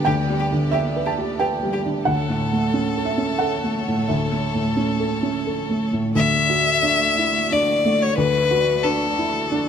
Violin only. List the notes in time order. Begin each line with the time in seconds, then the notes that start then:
0.06 G4
0.40 G4
0.73 G4
1.06 G4
1.40 G4
1.73 G4
2.05 A4
4.07 A4
6.16 E5
7.53 D5
8.02 C#5
8.17 B4
8.84 A4